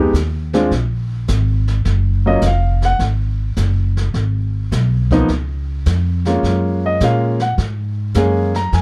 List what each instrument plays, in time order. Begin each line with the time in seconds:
Already playing: upright bass F2, grand piano G#3 B3 D#4 G4
0.13 upright bass D#2, kick, snare, hi-hat pedal
0.53 grand piano G#3 C4 D4 F4, snare
0.71 upright bass A#1, brush sweep, kick, snare
1.28 upright bass G#1, kick, snare, hi-hat pedal
1.67 snare
1.85 upright bass F#1, brush sweep, kick, snare
2.26 grand piano F#3 A#3 C#4 F4 D#5
2.42 upright bass F1, kick, snare, hi-hat pedal
2.46 grand piano F5
2.82 grand piano F#5, snare
2.99 upright bass G#1, brush sweep, kick, snare
3.56 upright bass F#1, kick, snare, hi-hat pedal
3.97 snare
4.14 upright bass G#1, brush sweep, kick, snare
4.72 upright bass B1, kick, snare, hi-hat pedal
5.11 grand piano F3 A#3 B3 D#4, kick, snare
5.28 upright bass C#2, brush sweep, kick, snare
5.86 upright bass F2, kick, snare, hi-hat pedal
6.25 grand piano G#3 A#3 C#4 F4, snare
6.43 upright bass F#2, brush sweep, kick, snare
6.86 grand piano D#5
7.00 upright bass A#2, grand piano G#3 A#3 C#4 F4 F5, kick, snare, hi-hat pedal
7.40 grand piano F#5, snare
7.58 upright bass G#2, brush sweep, kick, snare
8.14 upright bass F#2, grand piano G#3 A#3 C#4 G#4, kick, snare, hi-hat pedal
8.54 grand piano A#5, snare
8.72 upright bass F2, grand piano G#5, brush sweep, kick, snare